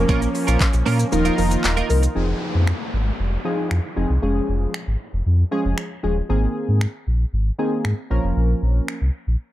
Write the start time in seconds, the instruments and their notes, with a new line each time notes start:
Already playing: synth keys F3 A#3 C#4 A#4, supersaw synth F3 A#3 C#4
0.09 sub bass A#1, clean electric guitar A#3 C#4 F4 A#4, kick, shaker
0.21 muted clean electric guitar stroke, closed hi-hat, shaker
0.34 muted clean electric guitar stroke, open hi-hat, shaker
0.47 sub bass A#1, clean electric guitar A#3 C#4 F4 A#4, closed hi-hat, shaker
0.60 muted clean electric guitar stroke, kick, clap, shaker
0.73 sub bass A#1, muted clean electric guitar stroke, closed hi-hat, shaker
0.86 sub bass A#2, clean electric guitar A#3 C#4 F4 A#4, open hi-hat, shaker
0.99 muted clean electric guitar stroke, closed hi-hat, shaker
1.12 sub bass D#1, supersaw synth D#3 D#4 F4 A#4, synth keys F3 A#3 D#4 A#4, muted clean electric guitar stroke, shaker
1.25 clean electric guitar A#3 D#4 F4 A#4, closed hi-hat, shaker
1.38 sub bass F1, synth keys F3 A#3 D#4 A#4, muted clean electric guitar stroke, open hi-hat, shaker
1.51 muted clean electric guitar stroke, closed hi-hat, shaker
1.64 sub bass D#1, muted clean electric guitar stroke, clap, shaker
1.77 clean electric guitar A#3 D#4 F4 A#4, closed hi-hat, shaker
1.89 sub bass C2, synth keys F3 A#3 D#4 A#4, muted clean electric guitar stroke, open hi-hat, shaker
2.03 muted clean electric guitar stroke, closed hi-hat, shaker
2.15 sub bass F1, synth keys F3 C4 D#4 G#4, downlifter
2.55 sub bass F2
2.67 finger snap
2.93 sub bass G#1
3.19 sub bass F1
3.45 synth keys F3 C4 D#4 G#4
3.71 sub bass F2, finger snap
3.96 sub bass F1, synth keys F3 C4 D#4 G#4
4.10 sub bass C2
4.22 sub bass F1, synth keys F3 G#3 C#4 G#4
4.49 sub bass F1
4.74 finger snap
4.87 sub bass G#1
5.13 sub bass F1
5.26 sub bass F2
5.51 synth keys F3 G#3 C#4 G#4
5.65 sub bass F1
5.78 finger snap
6.03 sub bass D#1, synth keys F3 G#3 C#4 G#4
6.29 sub bass G#1, synth keys D#3 A#3 C4 G#4
6.68 sub bass G#2
6.81 finger snap
7.07 sub bass A#1
7.33 sub bass G#1
7.59 synth keys D#3 A#3 C4 G#4
7.85 sub bass G#2, finger snap
8.10 sub bass A#1, synth keys F3 A#3 C#4 A#4
8.24 sub bass F1
8.36 sub bass A#1
8.62 sub bass A#1
8.88 finger snap
9.01 sub bass C2
9.27 sub bass A#1